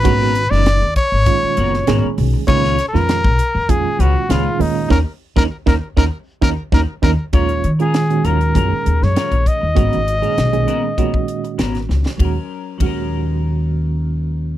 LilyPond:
<<
  \new Staff \with { instrumentName = "Trumpet" } { \time 4/4 \key ees \minor \tempo 4 = 99 ces''8. d''8. des''2 r8 | \tuplet 3/2 { des''4 bes'8~ } bes'4 aes'8 ges'8 f'8 ees'8 | bes'16 r8 bes'16 r16 bes'16 r16 bes'16 r8 bes'16 r16 bes'16 r16 bes'16 r16 | des''8. aes'8. bes'4~ bes'16 des''8. ees''8~ |
ees''2. r4 | r1 | }
  \new Staff \with { instrumentName = "Clean electric guitar" } { \time 4/4 \key ees \minor <ces' des' ges' bes'>16 <ces' des' ges' bes'>16 r16 <des' ges' bes'>16 r4. <ces' des' ges' bes'>16 r16 <ces' des' ges' bes'>16 r8. | <aes des' f' ces''>16 <aes des' f' ces''>16 r16 <des' f' ces''>16 r4. <aes des' f' ces''>16 r16 <aes des' f' ces''>16 r8. | <ees' ges' bes'>16 r8 <ees' ges' bes'>16 r16 <ees' ges' bes'>16 r16 <ees' ges' bes'>16 r8 <ees' ges' bes'>16 r16 <ees' ges' bes'>16 r16 <ees' ges' bes'>16 r16 | <ges des' f' bes'>16 r8 <des' f' bes'>16 r8 <ges des' f' bes'>16 r16 <ges des' f' bes'>16 r8. <ges des' f' bes'>16 r8. |
<ces' des' ges' bes'>16 r8 <des' ges' bes'>16 r8 <ces' des' ges' bes'>16 r16 <ces' des' ges' bes'>16 r8. <ces' des' ges' bes'>16 r8. | <ges des' bes'>16 r8. <ges des' bes'>2. | }
  \new Staff \with { instrumentName = "Reed electric piano" } { \time 4/4 \key ees \minor <bes, ees aes des' ges'>8 <des' ges'>16 <bes, ees aes des' ees'>8 <des' aes'>16 r8 <bes, ees aes des' f'>4 <bes, ees aes des' aes'>4 | <bes, ees aes des' f'>8 <des' aes'>16 <bes, ees aes des' f'>8 <des' aes'>16 r8 <bes, ees aes des' f'>4 <bes, ees aes des' aes'>8 <bes, ees aes des' f'>8 | <bes des' ees'>16 r8 <bes des' ees'>16 r16 <bes des' ees'>16 r16 <bes des' ees'>16 r8 <bes des' ees'>16 r16 <bes des' ees'>16 r16 <bes des' ees'>16 r16 | <bes, ees aes des' f'>8 <des' f'>16 <bes, ees aes des' f'>8 <bes, ees aes des' ges'>8. <bes, ees aes des' aes'>4.~ <bes, ees aes des' aes'>16 r16 |
<bes, ees aes des' ges'>8 r16 <bes, ees aes des' aes'>8 <bes, ees aes des' aes'>8. <bes, ees aes des' ges'>4.~ <bes, ees aes des' ges'>16 r16 | <bes, ees aes des' ges'>16 r8. <bes, ees aes des' ges'>2. | }
  \new Staff \with { instrumentName = "Upright bass" } { \clef bass \time 4/4 \key ees \minor aes,,8. ges,,8 ees,16 r16 aes,,16 r8 ges,,8 aes,,16 r16 ces,16 r16 | des,8 r16 f,8 ces,16 r16 f,8 r16 des,16 r16 des,16 r16 ees,8 | ees,16 r8 ees,16 r16 ees,16 r16 ees,16 r8 ees,16 r16 ees,16 r16 ees,16 r16 | ees,8 ees4 ees,8 ges,16 r16 ees,16 ges,16 r16 bes,,16 r16 ees,16 |
aes,,16 aes,,8 r16 ces,8 r4. aes,,8 des,16 r16 | ees,16 r8. ees,2. | }
  \new DrumStaff \with { instrumentName = "Drums" } \drummode { \time 4/4 <hh bd>8 hh16 sn16 <hh sn>8 <hh bd>8 <hh bd>8 hh16 sn16 <hh sn>8 hho8 | <hh bd>16 sn16 <hh sn>16 sn16 <hh sn>16 bd16 hh8 <hh bd>8 hh8 <hh sn>8 hho8 | <bd sn>8. <bd sn>16 r16 <bd sn>8 <bd sn>16 r8 <bd sn>8 <bd sn>8 <bd sn>8 | <hh bd>16 hh16 hh16 hh16 <hh sn>16 hh16 hh16 hh16 <hh bd>8 hh16 sn16 <hh sn>16 <hh bd>16 <hh bd>8 |
<hh bd>16 hh16 hh16 hh16 <hh sn>16 hh16 hh8 <hh bd>16 bd16 hh16 hh16 <hh sn>16 <hh sn>16 sn16 sn16 | <bd cymr>4 <bd cymr>4 r4 r4 | }
>>